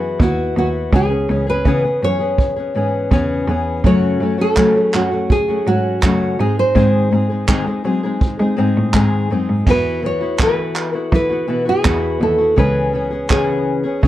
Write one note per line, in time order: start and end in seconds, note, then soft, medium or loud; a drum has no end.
0.00 0.13 F#2 medium
0.00 0.20 E3 medium
0.00 0.19 B3 medium
0.00 0.20 E4 medium
0.00 0.21 F#4 medium
0.00 0.23 G#4 medium
0.20 0.50 D#2 medium
0.20 0.56 B3 medium
0.20 0.57 E4 medium
0.20 0.57 F#4 medium
0.20 kick loud
0.57 0.86 D#2 medium
0.57 0.92 B3 medium
0.57 0.93 E4 medium
0.57 0.68 F#4 medium
0.57 0.94 F#4 medium
0.92 1.22 C#2 loud
0.92 1.11 C#3 medium
0.92 1.11 E3 medium
0.92 1.11 B3 medium
0.92 1.10 C#4 medium
0.92 1.08 G#4 medium
0.92 1.49 G#4 medium
0.92 kick loud
1.09 1.28 B3 soft
1.09 1.29 C#4 soft
1.09 1.28 G#4 soft
1.28 1.65 C#2 medium
1.28 1.47 E3 soft
1.28 1.47 B3 medium
1.28 1.47 C#4 medium
1.28 1.45 G#4 medium
1.47 1.65 B3 soft
1.47 1.66 C#4 medium
1.47 1.65 G#4 soft
1.47 2.04 B4 medium
1.65 1.95 C#3 medium
1.65 1.84 C#3 medium
1.65 1.84 E3 medium
1.65 1.84 B3 medium
1.65 1.85 C#4 medium
1.65 1.83 G#4 medium
1.65 kick medium
1.84 2.02 B3 soft
1.84 2.03 C#4 soft
1.84 2.02 G#4 soft
2.02 2.62 F#2 medium
2.02 2.20 E3 medium
2.02 2.21 B3 medium
2.02 2.20 C#4 medium
2.02 2.18 G#4 medium
2.02 3.08 C#5 medium
2.19 2.58 B3 soft
2.19 2.57 C#4 soft
2.19 2.55 G#4 soft
2.38 kick medium
2.56 2.74 B3 soft
2.56 2.75 C#4 soft
2.56 2.75 G#4 medium
2.75 3.05 G#2 medium
2.75 3.10 E3 medium
2.75 3.11 B3 medium
2.75 3.11 C#4 medium
2.75 3.12 G#4 medium
3.11 3.41 E2 medium
3.11 3.48 C#3 medium
3.11 3.46 E3 medium
3.11 3.48 B3 medium
3.11 3.48 C#4 medium
3.11 3.49 G#4 medium
3.11 kick loud
3.48 3.78 E2 medium
3.48 3.84 E3 medium
3.48 3.85 B3 medium
3.48 3.85 C#4 medium
3.48 3.86 G#4 medium
3.84 4.14 F#2 medium
3.84 4.21 F#2 medium
3.84 4.21 C#3 medium
3.84 4.19 F#3 medium
3.84 4.21 A3 medium
3.84 4.21 C#4 medium
3.84 4.22 F#4 medium
3.84 4.36 C#5 medium
3.84 kick medium
4.20 4.50 F#2 medium
4.20 4.39 F#3 medium
4.20 4.39 A3 soft
4.20 4.38 C#4 medium
4.20 4.37 F#4 medium
4.38 4.56 F#3 soft
4.38 4.57 A3 soft
4.38 4.57 C#4 soft
4.38 4.57 F#4 soft
4.38 4.81 A4 medium
4.57 4.75 F#2 medium
4.57 4.75 C#3 medium
4.57 4.87 F#3 medium
4.57 4.76 F#3 medium
4.57 4.76 A3 medium
4.57 4.75 C#4 medium
4.57 4.74 F#4 medium
4.57 kick medium
4.57 clap loud
4.75 4.92 F#3 soft
4.75 4.93 A3 soft
4.75 4.94 C#4 soft
4.75 4.93 F#4 soft
4.81 4.96 G#4 medium
4.93 5.54 F#2 medium
4.93 5.12 F#3 medium
4.93 5.12 A3 medium
4.93 5.11 C#4 medium
4.93 5.28 F#4 medium
4.93 5.10 F#4 medium
4.93 clap medium
5.11 5.49 F#3 soft
5.11 5.49 A3 soft
5.11 5.48 C#4 soft
5.11 5.47 F#4 soft
5.30 5.68 G#4 medium
5.30 kick loud
5.48 5.65 F#3 soft
5.48 5.67 A3 soft
5.48 5.67 C#4 soft
5.48 5.66 F#4 soft
5.66 5.96 G#2 medium
5.66 6.02 F#3 medium
5.66 6.02 C#4 medium
5.66 6.42 F#4 medium
5.66 6.03 F#4 medium
6.02 6.39 F#2 medium
6.02 6.33 F#2 medium
6.02 6.39 C#3 medium
6.02 6.39 F#3 medium
6.02 6.39 A3 medium
6.02 6.40 C#4 medium
6.02 6.40 F#4 medium
6.02 kick loud
6.02 clap loud
6.39 6.69 G#2 medium
6.39 6.74 G#3 medium
6.39 6.75 C4 medium
6.39 6.76 D#4 medium
6.39 6.58 G#4 medium
6.39 6.76 G#4 medium
6.59 8.91 C5 medium
6.75 7.12 G#2 medium
6.75 7.05 G#2 loud
6.75 7.12 D#3 medium
6.75 7.10 G#3 medium
6.75 7.11 C4 medium
6.75 7.12 D#4 medium
6.75 7.13 G#4 medium
6.75 kick medium
7.11 7.42 G#2 medium
7.11 7.30 G#3 soft
7.11 7.30 C4 medium
7.11 7.29 D#4 soft
7.11 7.28 G#4 soft
7.30 7.47 G#3 soft
7.30 7.47 C4 soft
7.30 7.48 D#4 soft
7.30 7.48 G#4 soft
7.48 7.66 G#2 medium
7.48 7.66 D#3 medium
7.48 7.78 G#3 medium
7.48 7.67 G#3 medium
7.48 7.67 C4 medium
7.48 7.66 D#4 medium
7.48 7.65 G#4 medium
7.48 kick loud
7.48 clap loud
7.66 7.83 G#3 soft
7.66 7.84 C4 soft
7.66 7.85 D#4 medium
7.66 7.84 G#4 soft
7.84 8.15 F#3 medium
7.84 8.03 G#3 medium
7.84 8.03 C4 medium
7.84 8.03 D#4 medium
7.84 8.02 G#4 medium
8.03 8.40 G#3 soft
8.03 8.40 C4 soft
8.03 8.39 D#4 soft
8.03 8.38 G#4 medium
8.21 kick loud
8.39 8.54 G#3 medium
8.39 8.55 G#3 soft
8.39 8.57 C4 medium
8.39 8.57 D#4 soft
8.39 8.57 G#4 medium
8.57 8.73 G#2 medium
8.57 8.93 G#3 medium
8.57 8.94 C4 medium
8.57 8.94 D#4 medium
8.57 8.95 G#4 medium
8.77 8.91 A2 medium
8.94 9.30 G#2 medium
8.94 9.09 G#2 medium
8.94 9.31 D#3 medium
8.94 9.29 G#3 medium
8.94 9.31 C4 medium
8.94 9.31 D#4 medium
8.94 9.31 G#4 medium
8.94 kick medium
8.94 clap medium
9.31 9.46 F#2 medium
9.31 9.66 G#3 medium
9.31 9.67 C4 medium
9.31 9.68 D#4 medium
9.31 9.68 G#4 medium
9.49 9.64 G#2 medium
9.67 11.08 E2 medium
9.67 10.01 E3 medium
9.67 10.02 B3 medium
9.67 10.03 E4 medium
9.67 10.04 F#4 medium
9.67 10.02 B4 medium
9.67 kick loud
9.67 crash medium
10.03 10.21 E3 medium
10.03 10.21 B3 soft
10.03 10.21 E4 medium
10.03 10.19 F#4 medium
10.03 10.42 C#5 medium
10.20 10.39 B3 soft
10.20 10.39 E4 soft
10.20 10.39 F#4 medium
10.39 10.94 E3 medium
10.39 10.94 B3 medium
10.39 10.93 E4 medium
10.39 10.92 F#4 medium
10.39 10.96 B4 medium
10.39 kick loud
10.39 clap loud
10.76 clap medium
10.93 11.12 B3 soft
10.93 11.13 E4 soft
10.93 11.12 F#4 soft
10.93 11.14 A4 medium
11.12 11.30 E3 medium
11.12 11.42 E3 medium
11.12 11.31 B3 medium
11.12 11.29 E4 medium
11.12 11.28 F#4 medium
11.12 11.69 B4 medium
11.12 kick loud
11.29 11.47 B3 soft
11.29 11.48 E4 soft
11.29 11.48 F#4 medium
11.47 11.78 B2 medium
11.47 11.66 E3 soft
11.47 11.66 B3 medium
11.47 11.66 E4 medium
11.47 11.64 F#4 medium
11.65 11.83 B3 soft
11.65 11.84 E4 soft
11.65 11.84 F#4 soft
11.65 12.22 G#4 medium
11.84 12.15 E2 medium
11.84 12.19 E3 medium
11.84 12.20 B3 medium
11.84 12.21 E4 medium
11.84 12.22 F#4 medium
11.84 kick loud
11.84 clap loud
12.20 12.51 D#2 medium
12.20 12.39 E3 medium
12.20 12.40 B3 medium
12.20 12.38 E4 medium
12.20 12.37 F#4 medium
12.20 12.58 A4 medium
12.38 12.56 B3 soft
12.38 12.57 E4 soft
12.38 12.57 F#4 soft
12.56 13.99 C#2 loud
12.56 12.93 C#3 medium
12.56 12.92 E3 medium
12.56 12.93 B3 medium
12.56 12.94 C#4 medium
12.56 12.94 G#4 medium
12.56 13.31 B4 medium
12.56 kick loud
12.93 13.12 E3 medium
12.93 13.12 B3 medium
12.93 13.11 C#4 medium
12.93 13.09 G#4 medium
13.11 13.30 B3 soft
13.11 13.30 C#4 soft
13.11 13.30 G#4 medium
13.29 13.84 C#3 medium
13.29 13.85 E3 medium
13.29 13.85 B3 medium
13.29 13.84 C#4 medium
13.29 14.08 G#4 medium
13.29 13.82 G#4 medium
13.29 kick loud
13.29 clap medium
13.83 14.02 B3 soft
13.83 14.02 C#4 soft
13.83 14.02 G#4 medium
14.01 14.08 C#3 loud
14.01 14.08 E3 medium
14.01 14.08 B3 medium
14.01 14.08 C#4 medium
14.01 14.08 G#4 medium
14.01 kick loud